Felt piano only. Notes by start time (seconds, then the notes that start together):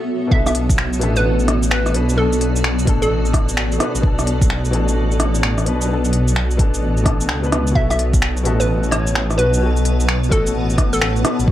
Already playing: B2 B3 D4 A4
0.27 B2 B3
0.33 D4 A4
0.99 B2 B3 D4 A4
1.92 B2 B3 D4 B4
2.13 B2 B3
2.19 D4 A4
2.85 B2 B3 D4
2.89 A4
3.78 B2 B3 D4
3.82 B4
3.99 B2 B3
4.04 D4 A4
4.71 B2 B3 D4 A4
5.64 B2 B3 D4 B4
5.85 B2 B3
5.91 D4 A4
6.57 B2 B3 D4 A4
7.03 B2 B3 D4
7.07 A4
7.41 B2 B3 D4
7.46 B4
7.71 B2 B3
7.77 F#4 A4
8.43 B2 B3 F#4 A4
9.36 B2 B3 F#4
9.40 B4
9.57 B2 B3
9.63 F#4 A4
10.29 B2 B3 F#4 A4
11.22 B2 B3 F#4 B4
11.44 B2 B3